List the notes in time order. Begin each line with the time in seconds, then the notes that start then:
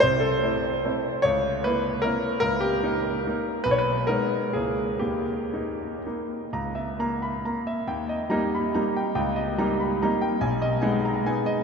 0.00 C2 C5
0.20 A4
0.42 A3 C4 E4
0.84 A3 C4 E4
1.22 C#2 C#5
1.64 A#3 E4 B4
2.02 A#3 E4 A#4
2.40 C#2 A#4
2.60 G4
2.83 A#3 D#4
3.27 A#3 D#4
3.64 B1 B4
3.71 C#5
3.78 B4
4.07 G#3 B3 D#4 A#4
4.53 C#2 A#3 E4 G#4
4.99 D#2 G4
5.54 A#3 D#4
6.07 A#3 D#4
6.53 C#2 A#5
6.75 E5
6.99 A#3 A#5
7.22 B5
7.45 A#3 A#5
7.67 E5
7.87 D#2 G5
8.09 D#5
8.30 G3 A#3 D#4 A#5
8.55 B5
8.75 G3 A#3 D#4 A#5
8.96 G5
9.15 C#2 G5
9.36 D#5
9.58 G3 A#3 D#4 A#5
9.80 B5
10.02 G3 A#3 D#4 A#5
10.21 G5
10.41 B1 G#5
10.62 D#5
10.81 G#3 B3 D#4 G#5
11.05 A#5
11.26 G#3 B3 D#4 G#5
11.46 D#5